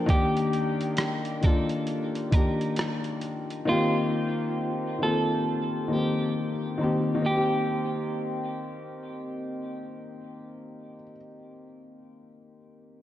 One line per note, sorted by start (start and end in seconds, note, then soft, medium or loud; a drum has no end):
0.00 0.10 F3 medium
0.00 0.08 A#3 medium
0.00 0.10 D4 medium
0.00 0.11 G4 medium
0.00 0.10 A#4 loud
0.06 0.92 D#3 loud
0.06 0.93 A#3 loud
0.06 0.94 D4 medium
0.06 1.44 G4 medium
0.06 kick loud
0.06 closed hi-hat medium
0.12 0.95 G4 loud
0.37 closed hi-hat medium
0.53 closed hi-hat medium
0.81 closed hi-hat medium
0.97 cross-stick loud
0.97 closed hi-hat medium
1.25 closed hi-hat soft
1.41 2.00 D#3 medium
1.41 2.01 A#3 medium
1.41 2.02 D4 medium
1.41 2.33 A4 medium
1.41 kick medium
1.41 closed hi-hat medium
1.47 2.03 F4 medium
1.69 closed hi-hat soft
1.87 closed hi-hat medium
2.15 closed hi-hat medium
2.31 3.17 D#3 medium
2.31 3.17 A#3 medium
2.31 3.18 D4 medium
2.31 3.63 A#4 medium
2.31 kick medium
2.31 closed hi-hat medium
2.37 3.19 G4 medium
2.61 closed hi-hat soft
2.76 cross-stick loud
2.76 closed hi-hat medium
3.04 closed hi-hat soft
3.21 closed hi-hat medium
3.50 closed hi-hat soft
3.65 4.51 D#3 medium
3.65 4.52 A#3 loud
3.65 4.53 C4 medium
3.65 4.98 F4 loud
3.71 4.54 G4 loud
4.99 5.58 D#3 medium
4.99 5.59 A#3 medium
4.99 5.60 C4 medium
5.03 5.61 F4 medium
5.03 5.93 A4 medium
5.88 6.47 D#3 medium
5.88 6.48 A#3 medium
5.88 6.49 C4 medium
5.93 6.61 G4 medium
5.93 6.50 G4 medium
6.78 7.11 D#3 medium
6.78 7.12 A#3 medium
6.78 7.13 C4 medium
6.83 7.14 G4 medium
7.15 10.95 D#3 medium
7.22 11.02 A#3 medium
7.26 11.10 C4 medium
7.26 9.90 G4 medium
7.37 11.17 G4 medium